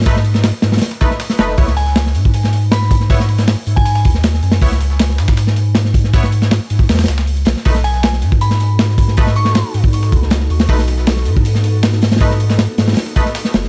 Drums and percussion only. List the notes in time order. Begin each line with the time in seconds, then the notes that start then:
0.02 snare, open hi-hat
0.06 kick, closed hi-hat, open hi-hat
0.15 snare
0.25 closed hi-hat, open hi-hat
0.34 snare
0.44 snare, closed hi-hat, open hi-hat
0.62 snare, closed hi-hat, open hi-hat
0.72 snare, open hi-hat
0.77 snare, open hi-hat
0.82 snare, closed hi-hat, open hi-hat
0.91 snare
1.01 kick, closed hi-hat, open hi-hat
1.11 snare
1.20 snare, closed hi-hat, open hi-hat
1.30 snare
1.39 snare, closed hi-hat, open hi-hat
1.48 snare
1.58 kick, closed hi-hat, open hi-hat
1.67 snare, closed hi-hat
1.76 snare, closed hi-hat, open hi-hat
1.86 snare
1.96 snare, closed hi-hat, open hi-hat
2.06 snare
2.15 closed hi-hat, open hi-hat
2.25 kick
2.34 closed hi-hat, open hi-hat
2.43 snare
2.53 closed hi-hat, open hi-hat
2.72 snare, closed hi-hat, open hi-hat
2.82 snare
2.91 kick, open hi-hat
3.00 snare
3.10 kick, closed hi-hat, open hi-hat
3.19 snare
3.29 closed hi-hat, open hi-hat
3.38 snare
3.48 snare, closed hi-hat, open hi-hat
3.67 closed hi-hat, open hi-hat
3.77 kick
3.85 closed hi-hat, open hi-hat
3.95 snare
4.05 kick, closed hi-hat, open hi-hat
4.14 snare
4.23 snare, closed hi-hat, open hi-hat
4.34 snare
4.42 closed hi-hat, open hi-hat
4.51 snare, open hi-hat
4.61 kick, closed hi-hat, open hi-hat
4.71 snare, closed hi-hat
4.80 snare, closed hi-hat, open hi-hat
4.90 snare
4.99 snare, closed hi-hat, open hi-hat
5.09 snare
5.18 snare, closed hi-hat, open hi-hat
5.28 kick, snare, closed hi-hat
5.37 snare, closed hi-hat, open hi-hat
5.47 snare
5.56 closed hi-hat, open hi-hat
5.75 snare, closed hi-hat, open hi-hat
5.85 snare
5.94 kick, open hi-hat
6.04 snare
6.13 kick, closed hi-hat, open hi-hat
6.23 snare
6.32 closed hi-hat, open hi-hat
6.42 snare
6.51 snare, closed hi-hat, open hi-hat
6.70 closed hi-hat, open hi-hat
6.79 kick, snare
6.89 snare, closed hi-hat, open hi-hat
6.94 snare, open hi-hat
6.99 snare, closed hi-hat, open hi-hat
7.03 snare, open hi-hat
7.08 snare, closed hi-hat, open hi-hat
7.18 snare, closed hi-hat
7.27 closed hi-hat, open hi-hat
7.37 closed hi-hat
7.45 snare, closed hi-hat, open hi-hat
7.56 snare
7.65 kick, closed hi-hat, open hi-hat
7.75 snare, closed hi-hat
7.84 snare, closed hi-hat, open hi-hat
7.94 snare
8.03 snare, closed hi-hat, open hi-hat
8.13 snare
8.22 closed hi-hat, open hi-hat
8.32 kick
8.41 closed hi-hat, open hi-hat
8.50 snare
8.60 closed hi-hat, open hi-hat
8.79 snare, closed hi-hat, open hi-hat
8.89 snare
8.98 kick, open hi-hat
9.08 snare
9.17 kick, closed hi-hat, open hi-hat
9.27 snare
9.35 closed hi-hat, open hi-hat
9.45 snare
9.55 snare, closed hi-hat, open hi-hat
9.74 closed hi-hat, open hi-hat
9.84 kick
9.93 closed hi-hat, open hi-hat
10.03 snare
10.12 kick, closed hi-hat, open hi-hat
10.22 snare
10.30 snare, closed hi-hat, open hi-hat
10.40 snare
10.50 closed hi-hat, open hi-hat
10.59 snare, open hi-hat
10.69 kick, closed hi-hat, open hi-hat
10.79 snare, closed hi-hat
10.88 snare, closed hi-hat, open hi-hat
10.98 snare
11.07 snare, closed hi-hat, open hi-hat
11.16 snare
11.25 closed hi-hat, open hi-hat
11.37 kick
11.45 closed hi-hat, open hi-hat
11.55 snare
11.64 closed hi-hat, open hi-hat
11.83 snare, closed hi-hat, open hi-hat
11.93 snare
12.02 snare, open hi-hat
12.12 snare, open hi-hat
12.16 snare, open hi-hat
12.21 kick, closed hi-hat, open hi-hat
12.30 snare
12.40 closed hi-hat, open hi-hat
12.50 snare
12.59 snare, closed hi-hat, open hi-hat
12.78 snare, closed hi-hat, open hi-hat
12.88 snare, open hi-hat
12.92 snare, open hi-hat
12.97 snare, closed hi-hat, open hi-hat
13.06 snare
13.16 kick, closed hi-hat, open hi-hat
13.26 snare
13.35 snare, closed hi-hat, open hi-hat
13.45 snare
13.54 snare, closed hi-hat, open hi-hat
13.64 snare